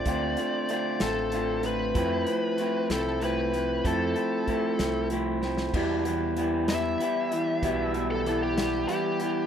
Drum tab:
CC |------------|------------|------------|x-----------|
HH |x-x-x-x-x-x-|x-x-x-x-x-x-|x-x-x-x-x---|--x-x-x-x-x-|
SD |------o-----|------o-----|------o---oo|------o-----|
BD |o-----------|o-----------|o---o-------|o-----------|

CC |------------|
HH |x-x-x-x-x-x-|
SD |------o-----|
BD |o-----------|